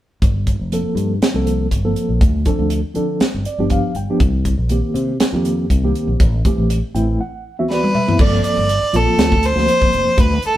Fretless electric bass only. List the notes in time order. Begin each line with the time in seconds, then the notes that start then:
0.22 G1
0.59 F1
0.95 G2
1.21 muted fretless electric bass stroke
1.34 C2
1.71 G1
2.09 A#1
2.21 D2
2.59 D2
2.96 D3
3.21 muted fretless electric bass stroke
3.34 G1
3.58 G1
3.95 G1
4.20 C2
4.58 A#1
4.94 C3
5.20 muted fretless electric bass stroke
5.33 F2
5.70 C2
6.08 A#1
6.20 A1
6.58 A1
6.95 A1
8.19 G1
8.44 muted fretless electric bass stroke
8.57 G1
8.83 muted fretless electric bass stroke
8.93 A#1
9.18 D2
9.56 D2
9.81 muted fretless electric bass stroke
9.93 F1
10.17 D2